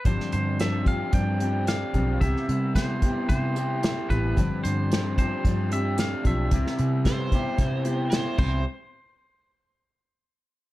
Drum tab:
CC |----------------|----------------|----------------|--------------x-|
HH |x-x-x-x-x-x-x-x-|x-x-x-x-x-x-x-x-|x-x-x-x-x-x-x-x-|x-x-x-x-x-x-x---|
SD |-o--o-------o---|-o--o-------o---|----o-------o---|-o--o-------o---|
BD |o-----o-o-----o-|o---o-o-o-----o-|o-----o-o-----o-|o---o-o-o-----o-|

CC |----------------|
HH |----------------|
SD |----------------|
BD |----------------|